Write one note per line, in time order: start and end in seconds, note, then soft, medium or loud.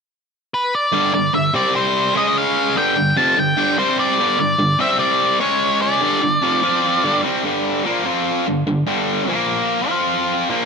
0.54 0.74 B4 medium
0.75 1.11 D5 medium
0.93 1.12 G2 medium
0.93 1.13 D3 medium
0.93 1.13 G3 loud
1.14 1.30 G2 medium
1.14 1.30 D3 medium
1.14 1.33 D5 medium
1.34 1.50 G2 medium
1.34 1.50 D3 medium
1.34 1.53 E5 medium
1.54 2.14 C3 medium
1.54 2.15 G3 loud
1.54 2.15 C4 loud
1.54 1.76 D5 medium
1.76 2.17 C5 medium
2.15 2.75 C#3 medium
2.15 2.76 G#3 loud
2.15 2.76 C#4 medium
2.15 2.37 D#5 medium
2.38 2.77 F5 loud
2.76 2.95 G2 medium
2.76 2.95 D3 medium
2.76 2.96 G3 medium
2.76 3.15 G5 medium
2.96 3.13 G2 medium
2.96 3.13 D3 medium
3.17 3.36 F2 medium
3.17 3.37 C3 medium
3.17 3.37 F3 loud
3.17 3.36 A5 medium
3.37 3.53 G2 medium
3.37 3.53 D3 medium
3.37 3.76 G5 loud
3.57 3.77 G2 medium
3.57 3.77 D3 loud
3.57 3.77 G3 loud
3.78 4.18 C3 medium
3.78 4.18 G3 medium
3.78 4.18 C4 loud
3.78 3.99 C5 medium
3.99 4.39 D5 medium
4.19 4.37 G2 medium
4.19 4.38 D3 loud
4.19 4.39 G3 loud
4.38 4.55 G2 medium
4.38 4.55 D3 medium
4.38 4.77 D5 medium
4.59 4.75 G2 medium
4.59 4.75 D3 medium
4.79 5.39 C3 medium
4.79 5.40 G3 medium
4.79 5.40 C4 loud
4.79 4.99 E5 medium
4.99 5.37 D5 medium
5.40 6.00 C#3 medium
5.40 6.01 G#3 medium
5.40 6.01 C#4 medium
5.40 5.82 C#5 medium
5.82 7.20 D5 medium
6.01 6.21 G2 medium
6.01 6.21 D3 medium
6.01 6.22 G3 medium
6.22 6.38 G2 medium
6.22 6.39 D3 medium
6.42 6.62 F2 medium
6.42 6.62 C3 medium
6.42 6.61 F3 medium
6.62 7.02 F3 medium
6.62 7.03 C4 medium
6.62 7.03 F4 loud
7.03 7.23 G2 medium
7.03 7.23 D3 medium
7.03 7.23 G3 loud
7.23 7.43 C3 medium
7.23 7.44 G3 medium
7.23 7.44 C4 medium
7.44 7.84 G2 medium
7.44 7.84 D3 medium
7.44 7.85 G3 medium
7.84 8.04 A#2 medium
7.84 8.04 F3 medium
7.84 8.05 A#3 medium
8.05 8.45 F3 medium
8.05 8.46 C4 medium
8.05 8.46 F4 medium
8.47 8.63 G2 medium
8.47 8.63 D3 medium
8.67 8.83 G2 soft
8.67 8.83 D3 medium
8.87 9.27 G2 medium
8.87 9.28 D3 medium
8.87 9.28 G3 medium
9.28 9.88 A#2 medium
9.28 9.88 F3 medium
9.28 9.90 A#3 medium
9.88 10.49 F3 medium
9.88 10.49 C4 medium
9.88 10.50 F4 medium
10.50 10.65 A#2 medium
10.50 10.65 F3 medium
10.50 10.65 A#3 medium